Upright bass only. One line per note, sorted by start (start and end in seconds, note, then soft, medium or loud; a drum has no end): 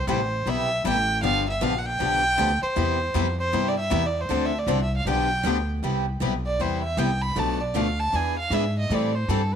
0.07 0.45 A1 medium
0.46 0.83 B1 medium
0.84 1.22 A1 medium
1.23 1.60 G1 medium
1.61 1.99 A#1 medium
2.00 2.37 B1 medium
2.38 2.60 D2 medium
2.62 muted upright bass stroke soft
2.76 3.14 E2 medium
3.14 3.52 F2 medium
3.53 3.90 G2 medium
3.91 4.29 E2 loud
4.29 4.66 D2 medium
4.67 5.05 C2 medium
5.05 5.43 B1 medium
5.44 5.82 D2 medium
5.82 6.20 C2 medium
6.20 6.58 B1 medium
6.59 6.96 E2 medium
6.97 7.35 C2 medium
7.36 7.74 B1 medium
7.75 8.12 D2 medium
8.13 8.50 E2 medium
8.50 8.88 G#2 medium
8.90 9.27 A2 medium
9.28 9.56 G2 loud